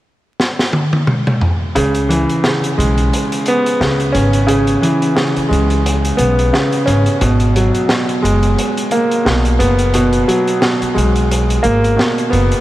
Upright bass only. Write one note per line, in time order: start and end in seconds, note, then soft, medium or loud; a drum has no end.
1.76 2.24 C#2 loud
2.78 3.08 B1 medium
3.81 4.11 C#2 medium
4.15 4.75 G#1 medium
5.37 muted upright bass stroke soft
5.51 6.11 C#2 medium
6.19 6.49 B1 medium
6.87 7.05 G#1 medium
7.21 7.69 G#1 loud
8.24 8.54 F#1 medium
9.26 9.56 B1 loud
9.60 10.20 F#1 medium
10.82 muted upright bass stroke soft
10.96 11.57 B1 medium
11.65 11.95 G#1 medium
12.33 12.50 F#1 medium